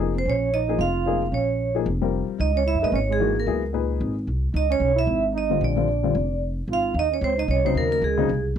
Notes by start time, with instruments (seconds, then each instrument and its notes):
Already playing: upright bass F1
0.00 grand piano F3 A#3 D#4 G#4
0.15 trombone C4, vibraphone C5
0.25 upright bass A#1, trombone C#4
0.30 vibraphone C#5
0.53 trombone D#4, vibraphone D#5
0.68 grand piano F3 A#3 D#4 G#4
0.78 upright bass F1, trombone F4, vibraphone F5
1.06 grand piano F3 A#3 D#4 G#4
1.31 upright bass A#1, trombone C#4, vibraphone C#5
1.75 grand piano F3 A#3 D#4 G#4
1.86 upright bass F1
2.02 grand piano G3 C4 F4 A#4
2.28 muted upright bass stroke
2.39 upright bass C#2, trombone D#4, vibraphone D#5
2.56 trombone C#4, vibraphone C#5
2.66 trombone E4, vibraphone E5
2.75 upright bass F#2
2.81 upright bass G#2, grand piano A#3 D#4 G#4 B4, trombone D#4, vibraphone D#5
2.92 upright bass G#1, trombone C#4, vibraphone C#5
3.09 trombone G#3, vibraphone G#4
3.20 grand piano E3 A#3 D#4 F#4
3.36 trombone A#3, vibraphone A#4
3.46 upright bass C#2, grand piano F#3 B3 E4 G#4
3.73 grand piano A#2 D#4 G#4 B4
4.00 upright bass G#1
4.27 upright bass C2
4.54 upright bass C#2, trombone D#4, vibraphone D#5
4.70 trombone C#4, vibraphone C#5
4.80 upright bass B1
4.96 trombone E4, vibraphone E5
5.07 upright bass G#1
5.33 trombone D#4
5.38 vibraphone D#5
5.50 grand piano D3 G3 C4 F4
5.61 upright bass A#1, trombone D4, vibraphone D5
5.76 grand piano D3 G3 C4 F4
6.03 grand piano D3 G3 C4 F4
6.15 upright bass F1
6.68 upright bass G#1, trombone F4
6.73 vibraphone F5
6.94 upright bass D#2, trombone D#4
6.99 vibraphone D#5
7.12 trombone C#4, vibraphone C#5
7.21 upright bass C#2, trombone C4, vibraphone C5
7.38 trombone D#4, vibraphone D#5
7.48 upright bass C2, trombone C#4, vibraphone C#5
7.65 grand piano C#3 F#3 C4 D#4, trombone C4, vibraphone C5
7.75 upright bass D#2, trombone A#3, vibraphone A#4
7.92 trombone A#3, vibraphone A#4
8.02 upright bass C#2, trombone G#3, vibraphone G#4
8.17 grand piano C#3 F#3 C4 D#4
8.29 upright bass C2